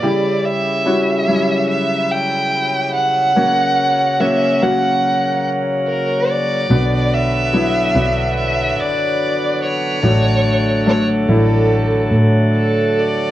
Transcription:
0.00 1.24 C#3 soft
0.00 6.66 C#3 soft
0.00 0.82 G3 medium
0.00 3.33 E4 soft
0.00 0.83 E4 medium
0.00 0.83 G4 medium
0.00 0.46 D5 medium
0.44 1.69 E5 medium
0.85 1.25 G3 medium
0.85 1.26 C#4 medium
0.85 1.26 E4 medium
0.85 1.26 F#4 medium
1.27 2.87 F#3 medium
1.27 2.86 G3 medium
1.27 2.86 C#4 soft
1.27 2.86 E4 soft
1.70 2.13 E5 medium
2.11 2.94 G5 medium
2.95 4.21 F#5 medium
3.36 4.16 F#3 medium
3.36 9.99 F#3 soft
3.36 4.16 A#3 medium
3.36 6.67 A#3 medium
3.36 4.16 C#4 medium
3.36 4.16 F#4 medium
4.20 4.60 F#3 medium
4.20 4.60 A#3 medium
4.20 4.60 C#4 medium
4.20 4.60 F#4 medium
4.20 4.64 E5 medium
4.62 6.20 F#3 medium
4.62 6.20 A#3 soft
4.62 6.20 C#4 soft
4.62 6.20 F#4 medium
4.62 5.45 F#5 medium
5.88 6.31 A#4 medium
6.29 7.15 D5 medium
6.69 7.91 B1 medium
6.69 7.91 B2 soft
6.69 13.31 D3 soft
6.69 7.49 F#3 medium
6.69 7.49 B3 soft
6.69 10.00 B3 medium
6.69 7.49 D4 soft
6.69 7.50 F#4 medium
7.13 8.37 E5 medium
7.53 7.93 F#3 medium
7.53 7.93 B3 medium
7.53 7.93 D4 medium
7.53 7.93 E4 medium
7.95 8.78 B1 medium
7.95 9.53 F#3 medium
7.95 9.53 B3 medium
7.95 9.54 D4 soft
7.95 9.54 F#4 medium
8.38 8.81 E5 medium
8.78 9.99 F#1 medium
8.78 9.62 D5 medium
9.64 10.84 C#5 medium
10.02 11.24 A1 medium
10.02 11.24 A2 soft
10.02 13.31 F#3 soft
10.02 10.82 F#3 medium
10.02 13.31 A3 medium
10.02 10.83 A3 medium
10.02 10.83 D4 medium
10.02 10.83 F#4 medium
10.86 11.26 F#3 medium
10.86 11.26 A3 medium
10.86 11.26 D4 medium
10.86 11.26 A4 medium
10.86 11.07 C#5 medium
11.28 12.08 A1 medium
11.28 12.87 F#3 medium
11.28 12.87 A3 soft
11.28 12.87 D4 medium
11.28 12.87 E4 medium
11.28 12.08 A4 medium
12.11 13.31 A2 medium
12.57 13.00 A4 medium
12.98 13.31 D5 medium

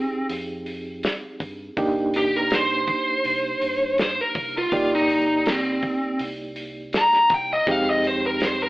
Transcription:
0.00 0.29 C4 medium
0.00 1.73 C4 medium
0.00 1.73 D#4 medium
0.00 1.74 G4 medium
0.00 1.73 G#4 medium
0.29 1.02 F2 medium
0.29 open hi-hat medium
0.66 open hi-hat medium
1.03 snare loud
1.03 open hi-hat medium
1.22 muted fingered electric bass stroke soft
1.40 1.69 G2 medium
1.40 kick medium
1.40 open hi-hat medium
1.77 2.92 C2 loud
1.77 4.68 A#3 medium
1.77 4.68 D4 medium
1.77 4.69 D#4 medium
1.77 4.69 G4 medium
1.77 kick loud
1.77 open hi-hat medium
2.14 2.36 G4 loud
2.14 open hi-hat medium
2.36 2.54 A#4 medium
2.50 3.96 C5 medium
2.50 snare loud
2.50 open hi-hat medium
2.88 kick medium
2.88 open hi-hat soft
3.25 3.54 C2 medium
3.25 open hi-hat medium
3.62 4.19 G2 medium
3.62 open hi-hat medium
3.98 snare loud
3.98 open hi-hat medium
4.02 4.21 C5 medium
4.21 4.55 A#4 medium
4.35 4.64 C2 medium
4.35 kick medium
4.35 open hi-hat soft
4.58 4.92 F4 medium
4.72 5.87 C2 medium
4.72 7.63 A#3 medium
4.72 7.64 D#4 medium
4.72 7.64 G4 medium
4.72 7.63 D5 medium
4.72 kick loud
4.72 open hi-hat medium
4.95 5.46 D#4 medium
5.09 open hi-hat medium
5.46 6.19 C4 loud
5.46 snare loud
5.46 open hi-hat medium
5.82 kick medium
5.82 open hi-hat medium
6.19 6.92 C2 medium
6.19 open hi-hat medium
6.56 open hi-hat medium
6.93 snare loud
6.93 open hi-hat medium
6.97 7.31 A#5 medium
7.13 muted fingered electric bass stroke soft
7.13 snare soft
7.30 7.59 C2 medium
7.30 kick medium
7.30 open hi-hat medium
7.34 7.51 G5 loud
7.53 7.71 D#5 medium
7.67 8.69 F2 loud
7.67 8.69 G#3 medium
7.67 8.69 C4 medium
7.67 8.69 D#4 medium
7.67 8.69 G4 medium
7.67 kick loud
7.67 open hi-hat medium
7.71 7.88 F5 medium
7.90 8.06 D#5 medium
8.04 8.24 C5 medium
8.04 open hi-hat medium
8.26 8.44 A#4 medium
8.40 8.61 C5 medium
8.40 snare loud
8.40 open hi-hat medium
8.63 8.69 A#4 medium

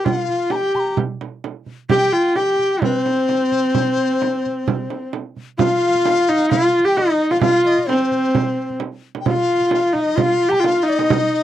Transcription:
0.05 0.27 F4 medium
0.05 0.53 F5 medium
0.05 frame drum medium
0.27 0.52 F4 medium
0.27 frame drum soft
0.50 0.97 G4 medium
0.50 0.57 A#5 medium
0.50 frame drum medium
0.56 0.77 G5 medium
0.75 0.81 C6 medium
0.75 frame drum soft
0.80 0.98 A#5 medium
0.97 frame drum medium
1.21 frame drum soft
1.44 frame drum medium
1.66 frame drum soft
1.90 2.14 G4 loud
1.90 2.33 G5 medium
1.90 frame drum medium
2.12 2.38 F4 medium
2.12 frame drum soft
2.36 2.84 G4 medium
2.36 2.79 G5 medium
2.36 frame drum medium
2.59 frame drum soft
2.82 5.13 C4 medium
2.82 3.00 B4 medium
2.82 frame drum medium
3.00 5.10 C5 medium
3.06 frame drum soft
3.29 frame drum medium
3.52 frame drum soft
3.75 frame drum medium
3.97 frame drum soft
4.22 frame drum medium
4.46 frame drum soft
4.68 frame drum medium
4.90 frame drum soft
5.13 frame drum medium
5.37 frame drum soft
5.58 6.30 F4 loud
5.58 6.47 F5 loud
5.58 frame drum medium
5.94 frame drum soft
6.05 frame drum medium
6.29 6.52 D#4 loud
6.29 frame drum soft
6.50 6.86 F4 loud
6.50 6.83 F5 medium
6.50 frame drum medium
6.84 6.99 G4 loud
6.84 6.99 G5 medium
6.84 frame drum soft
6.97 7.33 D#4 loud
6.97 7.30 D#5 medium
6.97 frame drum medium
7.30 7.41 F4 medium
7.30 7.41 F5 medium
7.30 frame drum medium
7.41 7.85 F4 loud
7.41 7.63 F5 medium
7.41 frame drum medium
7.66 7.90 D#5 medium
7.78 frame drum soft
7.89 8.77 C4 medium
7.89 8.81 C5 medium
7.89 frame drum medium
8.11 frame drum soft
8.35 frame drum medium
8.70 frame drum soft
8.80 frame drum medium
9.15 frame drum medium
9.20 9.29 G5 soft
9.26 9.95 F4 medium
9.26 9.73 F5 medium
9.26 frame drum medium
9.61 frame drum soft
9.71 9.96 F5 medium
9.71 frame drum medium
9.93 10.17 D#4 medium
9.93 10.02 F5 medium
9.93 frame drum soft
10.01 10.24 D#5 medium
10.15 10.50 F4 loud
10.15 frame drum medium
10.22 10.53 F5 medium
10.48 10.61 G4 loud
10.48 10.56 A#5 medium
10.53 10.68 G5 loud
10.53 frame drum soft
10.60 10.85 F4 medium
10.64 10.90 F5 medium
10.64 frame drum medium
10.83 11.43 D#4 medium
10.89 11.43 D#5 medium
10.99 frame drum medium
11.10 frame drum medium

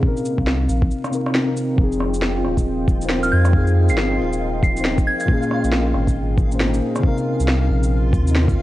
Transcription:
0.00 1.09 C3 medium
0.00 0.75 A#3 medium
0.00 1.10 C4 medium
0.00 5.29 C4 medium
0.00 0.75 D#4 medium
0.00 0.75 F5 medium
0.00 kick loud
0.05 1.12 D#4 medium
0.05 1.13 A#4 loud
0.17 shaker soft
0.25 shaker medium
0.34 0.68 C2 medium
0.34 5.99 G5 medium
0.38 5.99 F4 medium
0.38 kick medium
0.47 cross-stick soft
0.47 snare loud
0.67 0.91 A#1 loud
0.67 5.99 A#4 medium
0.67 shaker medium
0.82 5.99 D#5 medium
0.82 kick loud
0.91 shaker soft
1.04 cross-stick medium
1.04 shaker soft
1.10 1.31 C3 medium
1.10 1.32 C4 medium
1.10 1.32 D#4 medium
1.10 shaker medium
1.14 1.33 A#4 medium
1.26 cross-stick medium
1.33 1.76 C3 loud
1.33 1.76 C4 medium
1.33 1.77 D#4 medium
1.33 1.78 A#4 loud
1.33 snare loud
1.57 shaker medium
1.75 2.43 F1 loud
1.75 2.84 F3 loud
1.75 2.86 C4 medium
1.75 8.62 F4 medium
1.75 8.62 F5 medium
1.75 kick loud
1.81 2.87 D#4 medium
1.81 2.88 G#4 loud
1.92 shaker soft
2.00 cross-stick medium
2.14 shaker medium
2.22 snare loud
2.44 3.31 D#1 loud
2.44 cross-stick soft
2.57 kick medium
2.57 shaker medium
2.88 kick loud
2.88 shaker soft
2.97 3.48 F3 medium
2.97 3.51 C4 medium
3.01 3.52 D#4 medium
3.01 3.53 C5 medium
3.01 shaker medium
3.09 snare loud
3.23 3.30 F6 medium
3.23 shaker soft
3.32 3.91 F2 loud
3.32 3.55 G#6 medium
3.45 cross-stick medium
3.45 shaker medium
3.50 4.59 F3 loud
3.50 4.61 C4 medium
3.50 kick loud
3.55 4.62 D#4 medium
3.55 4.63 G#4 loud
3.67 shaker soft
3.89 4.18 G1 medium
3.89 4.12 C7 medium
3.89 shaker medium
3.98 snare loud
4.19 5.06 D#1 loud
4.33 shaker medium
4.63 4.87 C7 medium
4.63 kick loud
4.63 shaker soft
4.72 5.25 F3 medium
4.72 5.26 C4 medium
4.77 5.27 D#4 medium
4.77 5.29 C5 medium
4.77 shaker medium
4.85 snare loud
4.98 kick loud
4.98 shaker soft
5.07 5.16 G#6 medium
5.20 5.26 G#6 medium
5.20 shaker medium
5.25 6.34 A#2 loud
5.25 6.36 A#3 medium
5.25 7.75 A#3 medium
5.25 kick loud
5.30 6.37 C#4 medium
5.30 6.38 G#4 loud
5.39 7.75 D#4 medium
5.39 shaker soft
5.51 cross-stick medium
5.64 5.93 A#1 medium
5.64 shaker medium
5.72 snare loud
5.78 7.04 G#4 medium
5.94 6.81 G#1 loud
5.94 cross-stick soft
6.07 7.72 F5 medium
6.07 kick medium
6.07 shaker medium
6.38 kick loud
6.38 shaker soft
6.47 7.00 A#2 medium
6.47 7.01 A#3 medium
6.52 7.02 C#4 medium
6.52 7.04 C5 medium
6.52 shaker medium
6.60 snare loud
6.74 shaker soft
6.96 8.09 C3 loud
6.96 cross-stick medium
6.96 shaker medium
7.03 8.11 C4 medium
7.03 8.62 C4 medium
7.03 8.12 D#4 medium
7.03 kick loud
7.08 8.13 A#4 loud
7.18 8.62 F4 medium
7.18 shaker soft
7.40 7.69 C2 medium
7.40 8.62 D#5 medium
7.40 shaker medium
7.48 snare loud
7.56 8.62 A#4 medium
7.70 8.14 A#1 loud
7.83 8.62 G5 medium
7.83 shaker medium
8.13 8.56 D#2 loud
8.13 kick loud
8.13 shaker soft
8.23 8.62 C3 medium
8.23 8.62 C4 medium
8.27 8.62 D#4 medium
8.27 8.62 D#5 medium
8.27 shaker medium
8.35 snare loud
8.48 kick loud
8.48 shaker soft

